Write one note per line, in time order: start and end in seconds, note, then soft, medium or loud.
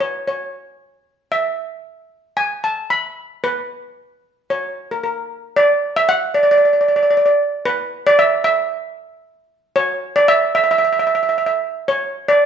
0.00 0.24 C#5 medium
0.28 1.02 C#5 medium
1.32 2.33 E5 medium
2.37 2.62 G#5 medium
2.64 2.91 A5 medium
2.90 3.28 B5 medium
3.44 4.45 B4 medium
4.50 4.91 C#5 medium
4.91 5.02 A#4 medium
5.04 5.40 A#4 medium
5.56 5.97 D5 loud
5.96 6.08 E5 medium
6.09 6.35 F#5 loud
6.34 6.41 D5 medium
6.43 6.49 D5 medium
6.51 6.56 D5 medium
6.57 6.64 D5 medium
6.65 6.72 D5 medium
6.73 6.79 D5 soft
6.81 6.86 D5 medium
6.88 6.94 D5 soft
6.96 7.01 D5 medium
7.03 7.08 D5 soft
7.10 7.16 D5 medium
7.17 7.24 D5 medium
7.26 7.31 D5 medium
7.65 8.07 B4 medium
8.07 8.19 D5 loud
8.19 8.43 E5 loud
8.44 9.46 E5 medium
9.76 10.17 C#5 loud
10.16 10.29 D5 medium
10.28 10.53 E5 loud
10.55 10.62 E5 loud
10.64 10.70 E5 medium
10.71 10.77 E5 medium
10.78 10.83 E5 medium
10.85 10.91 E5 medium
10.93 10.98 E5 medium
10.99 11.06 E5 medium
11.07 11.14 E5 medium
11.15 11.22 E5 medium
11.23 11.28 E5 medium
11.29 11.36 E5 medium
11.38 11.45 E5 medium
11.46 11.53 E5 medium
11.88 12.29 C#5 medium
12.28 12.46 D5 medium